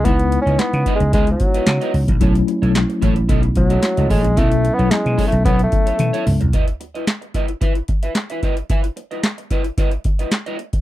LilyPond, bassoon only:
\new Staff \with { instrumentName = "Bassoon" } { \time 4/4 \key b \mixolydian \tempo 4 = 111 \tuplet 3/2 { b4 cis'8 b4 gis8 gis8 fis4~ } fis4 | r2 r8 fis4 gis8 | \tuplet 3/2 { a4 b8 gis4 a8 b8 a4~ } a4 | r1 |
r1 | }